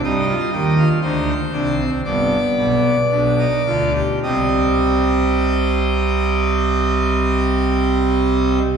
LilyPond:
<<
  \new Staff \with { instrumentName = "Pipe organ" } { \time 4/4 \key c \minor \tempo 4 = 53 << { ees''4 c''4 d''2 | <g c' ees''>1 | } \\ { ees'16 f'16 g'16 f'16 ees'8 d'16 c'16 b4 d'16 ees'16 f'16 g'16 | g'1 | } >> }
  \new Staff \with { instrumentName = "Pipe organ" } { \clef bass \time 4/4 \key c \minor <g, g>8 <ees, ees>8 <d, d>8 <c, c>8 <g,, g,>8 <b,, b,>8 <b,, b,>8 <d, d>8 | <c, c>1 | }
>>